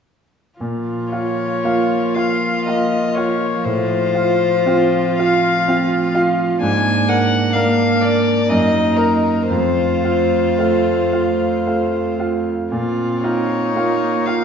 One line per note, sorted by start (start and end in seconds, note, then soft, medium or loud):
0.59 1.11 A#2 soft
0.59 3.60 F3 soft
0.59 3.61 F4 soft
1.12 1.60 F4 soft
1.12 2.16 C#5 medium
1.12 1.60 F5 soft
1.64 2.12 A#3 soft
1.64 2.12 F4 soft
1.64 2.12 F5 soft
2.15 2.63 F4 soft
2.15 2.65 F5 medium
2.15 2.63 F5 soft
2.65 3.12 A#3 soft
2.65 3.12 F4 soft
2.65 3.17 D#5 soft
2.65 3.12 F5 soft
3.15 3.61 F4 soft
3.15 3.66 C#5 medium
3.15 3.61 F5 soft
3.63 4.12 A2 soft
3.63 6.57 F3 soft
3.63 6.57 F4 soft
3.63 5.18 C5 medium
4.14 4.62 F4 soft
4.14 4.62 F5 soft
4.66 5.14 C4 soft
4.66 5.15 F4 soft
4.66 5.15 F5 soft
5.19 5.64 F4 soft
5.19 6.13 F5 medium
5.19 5.64 F5 soft
5.68 6.11 C4 soft
5.68 6.11 F4 soft
5.68 6.11 F5 soft
6.14 6.57 F4 soft
6.14 6.58 F5 soft
6.61 7.07 G#2 medium
6.61 7.51 A#3 medium
6.61 7.52 D4 medium
6.61 7.10 G#5 medium
7.09 7.50 A#4 soft
7.09 7.50 D5 soft
7.09 7.55 F#5 medium
7.53 8.46 A#3 medium
7.53 7.97 A#3 soft
7.53 8.50 D4 medium
7.53 7.97 A#4 soft
7.53 7.97 D5 soft
7.53 8.03 F5 medium
8.01 8.45 A#4 soft
8.01 8.50 D5 medium
8.01 8.45 D5 soft
8.48 8.96 F#2 soft
8.48 9.50 A#3 soft
8.48 9.50 D#4 medium
8.48 8.98 D#5 medium
8.97 9.48 A#4 medium
8.97 9.45 A#4 soft
8.97 9.45 D#5 soft
9.48 10.02 F2 soft
9.48 12.50 A3 soft
9.48 12.50 F4 soft
9.48 12.14 C5 medium
10.04 10.54 F4 soft
10.04 10.54 F5 soft
10.58 11.08 A3 soft
10.58 11.08 F4 soft
10.58 11.08 F5 soft
11.13 11.62 F4 soft
11.13 11.62 F5 soft
11.66 12.15 A3 soft
11.66 12.15 F4 soft
11.66 12.15 F5 soft
12.20 12.68 F4 soft
12.20 12.68 F5 soft
12.71 13.22 A#2 soft
12.71 13.75 C4 soft
12.71 13.25 F4 soft
13.23 14.44 D#4 soft
13.23 13.71 F4 soft
13.23 14.27 C#5 medium
13.23 13.71 F5 soft
13.73 14.44 A#3 soft
13.73 14.22 A#3 soft
13.73 14.22 F4 soft
13.73 14.22 F5 soft
14.26 14.44 F4 soft
14.26 14.44 F5 medium
14.26 14.44 F5 soft